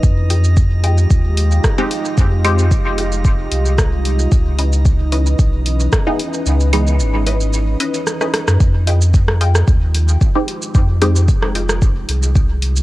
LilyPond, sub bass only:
\new Staff \with { instrumentName = "Sub bass" } { \clef bass \time 4/4 \key f \minor \tempo 4 = 112 f,2 ees,4 r4 | f,4 f,,4. c,4. | des,2 ces,4 r4 | des,4 aes,,4. r4 r16 ges,16 |
f,2 ees,4 r4 | f,4 f,,4. c,4. | }